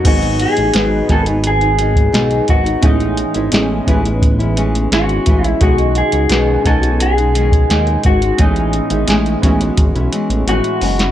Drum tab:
CC |x---------------|----------------|----------------|----------------|
HH |xxxxx-xxxxxxxxxx|xxxxx-xxxxxxxxxx|xxxxx-xxxxxxxxxx|xxxxxxxxxxxxxxox|
SD |----o-o-----o---|----o-------o---|----o-o-----o---|----o-o--------o|
BD |o-----o----o--o-|o-----o-o-----o-|o-----o----o--o-|o-----o-o-------|